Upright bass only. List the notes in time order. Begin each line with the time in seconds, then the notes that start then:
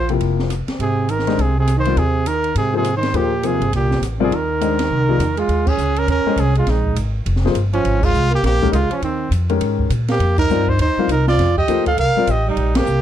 Already playing: A#1
0.20 F1
0.67 muted upright bass stroke
0.79 G#1
1.38 C2
1.96 D#2
2.55 G#2
3.13 D#2
3.60 G1
3.72 C2
4.01 A1
4.31 D#2
4.90 C2
5.19 E2
5.48 D#2
5.77 C#2
6.07 D#2
6.25 muted upright bass stroke
6.36 C2
6.66 A#1
6.96 G#1
7.26 F1
7.54 G1
7.84 G#1
8.14 C2
8.43 A#1
8.73 C#2
8.91 muted upright bass stroke
9.01 D#2
9.31 F2
9.60 G#2
9.90 A#2
10.19 F2
10.49 G2
10.79 D#2
10.97 muted upright bass stroke
11.08 C2
11.38 F2
11.68 D2
11.97 C2
12.14 muted upright bass stroke
12.27 A1
12.56 A#1
12.86 C2